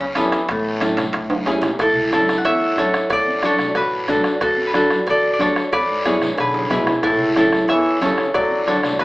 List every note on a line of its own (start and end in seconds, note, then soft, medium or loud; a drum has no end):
0.00 0.15 B3 medium
0.00 0.06 C#4 medium
0.00 0.17 E4 medium
0.15 0.42 E2 medium
0.15 0.47 E3 medium
0.15 3.26 B3 medium
0.15 0.39 C#4 medium
0.15 0.39 E4 medium
0.15 0.39 A4 medium
0.15 bombo low medium
0.15 bombo rim medium
0.15 high conga medium
0.15 high timbale medium
0.15 low timbale medium
0.15 short guiro medium
0.32 bombo rim medium
0.32 high timbale medium
0.32 short guiro medium
0.48 1.01 A1 medium
0.48 1.60 A2 medium
0.48 3.84 A3 medium
0.48 bombo low medium
0.48 bombo rim medium
0.48 high timbale medium
0.48 long guiro medium
0.81 1.05 C#4 medium
0.81 1.05 E4 medium
0.81 1.05 A4 medium
0.81 bombo rim medium
0.81 high conga medium
0.81 high timbale medium
0.81 short guiro medium
0.97 bombo rim medium
0.97 high conga medium
0.97 low conga medium
0.97 high timbale medium
0.97 short guiro medium
1.13 1.40 C#2 medium
1.13 bombo rim medium
1.13 high timbale medium
1.13 long guiro medium
1.30 high conga medium
1.30 high timbale loud
1.46 1.73 E2 medium
1.46 1.70 C#4 medium
1.46 1.70 E4 medium
1.46 1.70 G#4 medium
1.46 bombo low medium
1.46 bombo rim medium
1.46 low timbale medium
1.46 short guiro medium
1.62 bombo rim medium
1.62 low conga medium
1.62 low timbale medium
1.62 short guiro medium
1.79 1.96 A1 loud
1.79 2.12 E4 medium
1.79 2.13 A4 medium
1.79 bombo low medium
1.79 bombo rim medium
1.79 cowbell loud
1.79 long guiro medium
1.96 2.35 C#2 medium
2.10 2.36 C#4 medium
2.10 4.74 E4 medium
2.10 2.36 E4 medium
2.10 2.36 A4 medium
2.10 2.78 A4 medium
2.10 bombo rim medium
2.10 high conga medium
2.10 short guiro medium
2.28 bombo rim medium
2.28 high conga medium
2.28 short guiro medium
2.38 3.98 F#5 medium
2.44 2.71 E2 loud
2.44 2.78 C#5 medium
2.44 4.18 E5 loud
2.44 bombo rim medium
2.44 cowbell medium
2.44 long guiro medium
2.77 2.91 A1 medium
2.77 3.01 C#4 medium
2.77 3.01 E4 medium
2.77 3.12 A4 medium
2.77 3.01 A4 medium
2.77 3.18 C#5 medium
2.77 bombo low medium
2.77 bombo rim medium
2.77 high conga medium
2.77 short guiro medium
2.93 bombo rim medium
2.93 short guiro medium
3.10 3.27 D2 loud
3.10 3.44 A4 medium
3.10 3.51 D5 loud
3.10 bombo low medium
3.10 bombo rim medium
3.10 cowbell loud
3.10 long guiro medium
3.27 3.67 F#2 medium
3.42 3.66 D4 medium
3.42 3.67 F#4 medium
3.42 3.67 A4 medium
3.42 4.10 A4 medium
3.42 5.16 C#5 medium
3.42 bombo rim medium
3.42 high conga medium
3.42 short guiro medium
3.59 bombo rim medium
3.59 high conga medium
3.59 low conga medium
3.59 short guiro medium
3.75 4.02 A1 loud
3.75 4.09 F#4 medium
3.75 4.66 B4 loud
3.75 bombo rim medium
3.75 cowbell medium
3.75 long guiro medium
4.08 4.22 D2 medium
4.08 4.32 D4 medium
4.08 4.32 F#4 medium
4.08 4.41 F#4 medium
4.08 4.32 A4 medium
4.08 4.42 A4 medium
4.08 bombo low medium
4.08 bombo rim medium
4.08 high conga medium
4.08 low conga medium
4.08 short guiro medium
4.24 bombo rim medium
4.24 short guiro medium
4.40 4.57 D2 loud
4.40 4.74 F#4 medium
4.40 4.75 A4 medium
4.40 bombo low medium
4.40 bombo rim medium
4.40 cowbell loud
4.40 long guiro medium
4.57 4.97 F#2 medium
4.67 5.72 B4 medium
4.73 4.97 D4 medium
4.73 4.97 F#4 medium
4.73 7.18 F#4 medium
4.73 4.98 A4 medium
4.73 5.09 A4 medium
4.73 bombo rim medium
4.73 high conga medium
4.73 short guiro medium
4.90 bombo rim medium
4.90 high conga medium
4.90 short guiro medium
5.06 5.33 A1 medium
5.06 5.40 A4 medium
5.06 5.33 D5 loud
5.06 bombo rim medium
5.06 cowbell medium
5.06 long guiro medium
5.33 5.47 D5 medium
5.39 5.53 D2 medium
5.39 5.62 D4 medium
5.39 5.63 F#4 medium
5.39 5.63 A4 medium
5.39 6.11 A4 medium
5.39 5.79 C#5 medium
5.39 bombo low medium
5.39 bombo rim medium
5.39 high conga medium
5.39 low timbale medium
5.39 short guiro medium
5.56 bombo rim medium
5.56 short guiro medium
5.72 5.88 E2 loud
5.72 6.40 B4 medium
5.72 6.11 D5 medium
5.72 bombo low medium
5.72 bombo rim medium
5.72 cowbell loud
5.72 long guiro medium
5.88 6.28 G#2 medium
6.05 6.28 B3 medium
6.05 6.28 E4 medium
6.05 6.39 G#4 medium
6.05 6.29 G#4 medium
6.05 7.69 C#5 medium
6.05 bombo rim medium
6.05 high conga medium
6.05 short guiro medium
6.21 bombo rim medium
6.21 high conga medium
6.21 low conga medium
6.21 short guiro medium
6.38 6.64 B1 medium
6.38 6.69 D3 medium
6.38 6.71 G#4 medium
6.38 8.45 B4 medium
6.38 bombo rim medium
6.38 cowbell medium
6.38 long guiro medium
6.54 high conga loud
6.66 high conga medium
6.70 6.84 B1 medium
6.70 6.94 B2 medium
6.70 6.93 B3 medium
6.70 6.94 E4 medium
6.70 7.03 E4 medium
6.70 7.09 G#4 medium
6.70 6.94 B4 medium
6.70 bombo low medium
6.70 bombo rim medium
6.70 short guiro medium
6.76 low conga loud
6.87 bombo rim medium
6.87 low conga loud
6.87 short guiro medium
7.03 7.19 A1 loud
7.03 7.34 A2 medium
7.03 7.37 E4 medium
7.03 7.37 A4 medium
7.03 bombo low medium
7.03 bombo rim medium
7.03 cowbell loud
7.03 long guiro medium
7.19 7.59 C#2 medium
7.36 7.67 A2 medium
7.36 7.59 C#4 medium
7.36 7.59 E4 medium
7.36 9.04 E4 medium
7.36 7.60 A4 medium
7.36 8.02 A4 medium
7.36 bombo rim medium
7.36 high conga medium
7.36 short guiro medium
7.52 bombo rim medium
7.52 high conga medium
7.52 short guiro medium
7.68 7.95 E2 medium
7.68 8.00 E3 medium
7.68 8.01 C#5 medium
7.68 9.04 E5 loud
7.68 bombo rim medium
7.68 cowbell medium
7.68 long guiro medium
8.01 8.15 A1 medium
8.01 8.32 C#3 medium
8.01 8.25 C#4 medium
8.01 8.25 E4 medium
8.01 8.34 A4 medium
8.01 8.25 A4 medium
8.01 8.40 C#5 medium
8.01 bombo low medium
8.01 bombo rim medium
8.01 high conga medium
8.01 low timbale medium
8.01 short guiro medium
8.18 bombo rim medium
8.18 short guiro medium
8.34 8.50 D2 loud
8.34 8.65 F#3 medium
8.34 8.68 A4 medium
8.34 8.73 D5 medium
8.34 bombo low medium
8.34 bombo rim medium
8.34 cowbell loud
8.34 long guiro medium
8.50 8.90 F#2 medium
8.67 8.97 D3 medium
8.67 8.90 D4 medium
8.67 8.91 F#4 medium
8.67 8.91 A4 medium
8.67 9.04 A4 medium
8.67 9.04 C#5 medium
8.67 bombo rim medium
8.67 high conga medium
8.67 short guiro medium
8.83 bombo rim medium
8.83 high conga medium
8.83 low conga medium
8.83 short guiro medium
8.99 9.04 A1 loud
8.99 9.04 D3 medium
8.99 9.04 F#4 medium
8.99 9.04 B4 medium
8.99 bombo rim medium
8.99 cowbell medium
8.99 long guiro medium